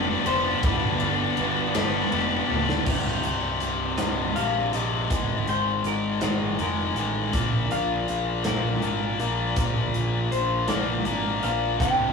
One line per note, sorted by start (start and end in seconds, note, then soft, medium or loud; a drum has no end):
0.00 0.16 F1 loud
0.00 0.28 G2 medium
0.00 0.28 D3 medium
0.00 0.28 G3 medium
0.00 0.29 G3 medium
0.00 0.27 B3 medium
0.00 0.28 B3 medium
0.00 0.26 D4 medium
0.00 0.27 D4 medium
0.00 0.25 G4 medium
0.00 0.26 G4 medium
0.00 0.26 D5 medium
0.26 0.53 F1 medium
0.26 0.62 G3 medium
0.26 0.63 B3 medium
0.26 0.63 D4 medium
0.26 0.64 G4 medium
0.26 0.63 C5 medium
0.26 ride medium
0.62 0.90 G1 loud
0.62 1.37 G2 medium
0.62 1.38 D3 loud
0.62 1.01 G3 loud
0.62 0.99 B3 loud
0.62 0.98 D4 loud
0.62 0.97 G4 loud
0.62 2.09 B4 medium
0.62 kick loud
0.62 ride loud
0.98 1.28 G1 medium
0.98 1.75 G3 medium
0.98 1.74 B3 medium
0.98 1.73 D4 medium
0.98 1.73 G4 medium
0.98 ride medium
1.37 1.65 G1 medium
1.37 1.75 G3 medium
1.37 1.74 B3 medium
1.37 1.74 D4 medium
1.37 1.73 G4 medium
1.37 ride medium
1.74 2.02 G1 loud
1.74 2.51 G2 medium
1.74 2.50 D3 medium
1.74 2.09 G3 medium
1.74 2.11 B3 medium
1.74 2.12 D4 medium
1.74 2.13 G4 medium
1.74 snare loud
1.74 ride loud
2.11 2.39 F1 loud
2.11 2.49 G3 medium
2.11 2.48 B3 medium
2.11 2.47 D4 medium
2.11 2.46 G4 medium
2.11 ride medium
2.47 2.85 G3 medium
2.47 2.85 B3 medium
2.47 2.84 D4 medium
2.47 2.83 G4 medium
2.47 high tom medium
2.51 2.77 D1 medium
2.69 snare loud
2.84 3.20 C1 medium
2.84 3.99 C2 medium
2.84 3.99 G2 loud
2.84 4.00 C3 loud
2.84 kick loud
2.84 crash loud
3.23 3.57 C1 medium
3.23 4.36 C3 medium
3.23 closed hi-hat medium
3.60 3.95 C1 medium
3.60 5.11 G3 medium
3.60 closed hi-hat medium
3.97 4.32 C1 loud
3.97 4.36 C2 medium
3.97 4.37 G2 medium
3.97 4.37 C3 medium
3.97 4.35 D#5 medium
3.97 snare loud
3.97 closed hi-hat loud
4.36 4.70 A#1 medium
4.36 4.72 C2 medium
4.36 4.73 G2 medium
4.36 4.73 C3 medium
4.36 4.74 F5 medium
4.36 closed hi-hat medium
4.73 5.06 A#1 medium
4.73 5.08 C2 medium
4.73 5.09 G2 medium
4.73 5.09 C3 medium
4.73 5.44 D#5 medium
4.73 closed hi-hat medium
5.10 5.44 G#1 medium
5.10 6.20 G#2 loud
5.10 6.21 D#3 loud
5.10 6.21 G#3 loud
5.10 kick loud
5.10 closed hi-hat loud
5.47 5.81 G#1 loud
5.47 6.59 G#3 medium
5.47 5.83 C5 medium
5.47 closed hi-hat medium
5.84 6.18 G#1 medium
5.84 7.35 D#4 medium
5.84 6.21 A#4 medium
5.84 closed hi-hat medium
6.21 6.55 G#1 loud
6.21 6.58 G#2 medium
6.21 6.59 D#3 medium
6.21 6.59 G#3 loud
6.21 6.61 G#4 medium
6.21 snare loud
6.21 closed hi-hat medium
6.59 6.93 F1 medium
6.59 6.97 G#2 medium
6.59 6.98 D#3 medium
6.59 6.97 G#3 medium
6.59 6.95 A#4 medium
6.59 closed hi-hat medium
6.95 7.29 A1 medium
6.95 7.32 G#2 medium
6.95 7.33 G#3 loud
6.95 closed hi-hat medium
6.99 7.33 D#3 medium
7.33 7.67 A#1 medium
7.33 8.43 A#2 loud
7.33 8.44 F3 medium
7.33 8.45 A#3 loud
7.33 kick loud
7.33 closed hi-hat loud
7.71 8.04 A#1 loud
7.71 8.84 D4 medium
7.71 8.42 F5 loud
7.71 closed hi-hat medium
8.08 8.42 A#1 medium
8.08 9.95 F4 medium
8.08 closed hi-hat medium
8.44 8.79 A#1 medium
8.44 8.81 A#2 medium
8.44 8.82 F3 medium
8.44 8.82 A#3 medium
8.44 9.17 A#4 medium
8.44 snare loud
8.44 closed hi-hat medium
8.82 9.16 G#1 medium
8.82 9.18 A#2 medium
8.82 9.19 F3 medium
8.82 9.19 A#3 medium
8.82 9.95 D4 medium
8.82 closed hi-hat medium
9.19 9.53 A#1 medium
9.19 9.56 A#2 loud
9.19 9.57 F3 medium
9.19 9.57 A#3 medium
9.19 closed hi-hat medium
9.56 9.90 A#1 medium
9.56 10.66 A#2 medium
9.56 10.67 F3 loud
9.56 10.68 A#3 loud
9.56 kick loud
9.56 closed hi-hat loud
9.94 10.28 A#1 medium
9.94 11.07 D4 medium
9.94 closed hi-hat medium
10.31 10.65 A#1 medium
10.31 11.81 F4 medium
10.31 10.66 C5 medium
10.31 closed hi-hat medium
10.67 11.02 A#1 loud
10.67 11.03 A#2 medium
10.67 11.04 F3 medium
10.67 11.05 A#3 loud
10.67 11.43 D5 medium
10.67 snare loud
10.67 closed hi-hat medium
11.04 11.39 G#1 medium
11.04 11.43 A#2 medium
11.04 11.43 F3 medium
11.04 11.44 A#3 loud
11.04 11.82 D4 medium
11.04 closed hi-hat medium
11.43 11.77 A#1 medium
11.43 11.78 A#2 medium
11.43 11.79 F3 medium
11.43 11.79 A#3 loud
11.43 11.80 F5 loud
11.43 closed hi-hat medium
11.79 12.13 C1 medium
11.79 12.13 C2 loud
11.79 12.13 G2 loud
11.79 12.13 C3 loud
11.79 12.13 G5 loud
11.79 kick loud
11.79 closed hi-hat loud